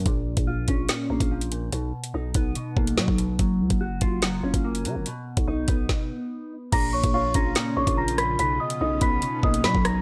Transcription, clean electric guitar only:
\new Staff \with { instrumentName = "Clean electric guitar" } { \clef bass \time 4/4 \key bes \phrygian \tempo 4 = 144 bes,4 f'8 des'8 bes,8 bes8 f8 bes,8 | b,4 dis'8 b8 b,8 ais8 fis8 b,8 | ges4 ges'8 f'8 ges8 des'8 bes8 ges8 | b,4 dis'8 b2~ b8 |
bes,4 f'8 des'8 bes,8 bes8 f8 bes,8 | b,4 dis'8 b8 b,8 ais8 fis8 b,8 | }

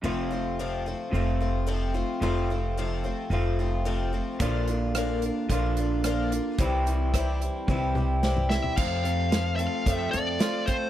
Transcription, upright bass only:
\new Staff \with { instrumentName = "Upright bass" } { \clef bass \time 4/4 \key f \major \tempo 4 = 110 f,,2 f,,2 | f,,2 f,,2 | bes,,2 bes,,2 | c,2 c,2 |
f,2 f,8 f,8 r4 | }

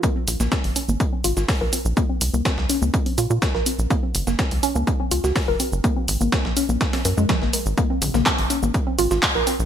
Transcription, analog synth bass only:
\new Staff \with { instrumentName = "Analog synth bass" } { \clef bass \time 4/4 \key ges \lydian \tempo 4 = 124 r8 bes,,16 bes,,16 r16 aes,,16 r16 aes,,16 r8 aes,,16 aes,,16 r16 bes,,16 r16 bes,,16 | r8 c,16 c,16 r16 des,16 r16 des,16 r8 bes,16 bes,16 r16 bes,,16 r16 bes,,16 | r8 ges,,16 ges,,16 r16 des,16 r16 des,16 r8 des,16 des,16 r16 ges,,16 r16 ges,,16 | r8 aes,,16 aes,,16 r16 bes,,16 r16 bes,,16 r8 ges,16 ges,16 r16 aes,,16 r16 aes,,16 |
r8 bes,,16 bes,,16 r16 aes,,16 r16 aes,,16 r8 aes,,16 aes,,16 r16 bes,,16 r16 bes,,16 | }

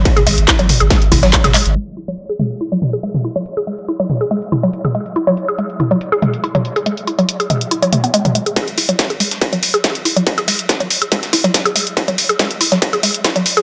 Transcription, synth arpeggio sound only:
\new Staff \with { instrumentName = "Synth arpeggio sound" } { \clef bass \time 4/4 \key fis \dorian \tempo 4 = 141 r16 gis'16 gis16 r16 e'16 fis16 r16 gis'16 gis16 r16 e'16 fis16 r16 gis'16 gis16 r16 | gis16 r16 e'16 fis16 r16 gis'16 gis16 r16 e'16 fis16 r16 gis'16 gis16 r16 e'16 fis16 | r16 gis'16 gis16 r16 e'16 fis16 r16 gis'16 gis16 r16 e'16 fis16 r16 gis'16 gis16 r16 | e'16 fis16 r16 gis'16 gis16 r16 e'16 fis16 r16 gis'16 gis16 r16 e'16 fis16 r16 gis'16 |
gis16 r16 e'16 fis16 r16 gis'16 gis16 r16 e'16 fis16 a16 b16 gis16 fis16 gis16 gis'16 | gis16 r16 e'16 fis16 r16 gis'16 gis16 r16 e'16 fis16 r16 gis'16 gis16 r16 e'16 fis16 | r16 gis'16 gis16 r16 e'16 fis16 r16 gis'16 gis16 r16 e'16 fis16 r16 gis'16 gis16 r16 | e'16 fis16 r16 gis'16 gis16 r16 e'16 fis16 r16 gis'16 gis16 r16 e'16 fis16 r16 gis'16 | }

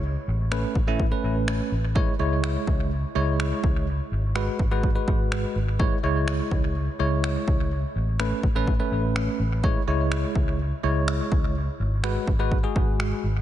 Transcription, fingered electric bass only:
\new Staff \with { instrumentName = "Fingered electric bass" } { \clef bass \time 4/4 \key cis \minor \tempo 4 = 125 cis,8 a,,4 a,,4 a,,4 a,,8~ | a,,8 cis,4 cis,4 cis,4 cis,8~ | cis,8 gis,,4 gis,,4 gis,,4 gis,,8~ | gis,,8 cis,4 cis,4 cis,4 cis,8~ |
cis,8 a,,4 a,,4 a,,4 a,,8~ | a,,8 cis,4 cis,4 cis,4 cis,8~ | cis,8 gis,,4 gis,,4 gis,,4 gis,,8 | }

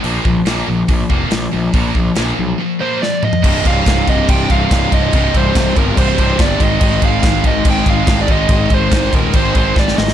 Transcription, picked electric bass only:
\new Staff \with { instrumentName = "Picked electric bass" } { \clef bass \time 4/4 \key c \minor \tempo 4 = 142 bes,,8 bes,,8 bes,,8 bes,,8 bes,,8 f,,8 bes,,8 bes,,8 | bes,,8 bes,,8 bes,,8 b,,8 r2 | c,,8 c,,8 c,,8 c,,8 c,,8 c,,8 c,,8 c,,8 | c,,8 c,,8 c,,8 g,,8 c,,8 c,,8 g,,8 aes,,8 |
aes,,8 aes,,8 aes,,8 aes,,8 aes,,8 aes,,8 aes,,8 aes,,8 | aes,,8 aes,,8 aes,,8 ees,,8 aes,,8 aes,,8 aes,,8 aes,,8 | }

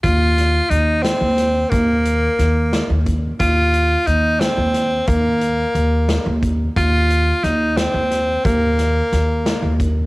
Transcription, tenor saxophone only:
\new Staff \with { instrumentName = "Tenor saxophone" } { \time 5/8 \key c \minor \tempo 4 = 89 f'4 ees'8 c'4 | bes2 r8 | f'4 ees'8 c'4 | bes2 r8 |
f'4 ees'8 c'4 | bes2 r8 | }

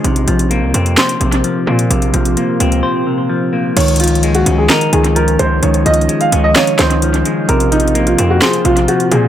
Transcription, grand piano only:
\new Staff \with { instrumentName = "Grand piano" } { \time 4/4 \key des \major \tempo 4 = 129 r1 | r1 | des''8 f'8. ges'8 aes'16 bes'8 aes'8 bes'8 c''8 | des''8 ees''8. f''8 ees''16 des''8 c''4. |
bes'8 ees'8. f'8 ges'16 aes'8 f'8 ges'8 aes'8 | }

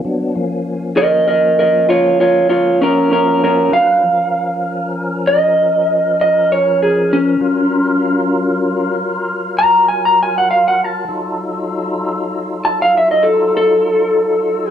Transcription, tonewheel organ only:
\new Staff \with { instrumentName = "Tonewheel organ" } { \time 12/8 \key bes \minor \tempo 4. = 65 <ges ces' d'>8 <f bes des'>1~ <f bes des'>4. | <ges d' ces''>8 <f des' bes'>1~ <f des' bes'>4. | <ges f' bes'>1. | <ges ees' f' a'>1. | }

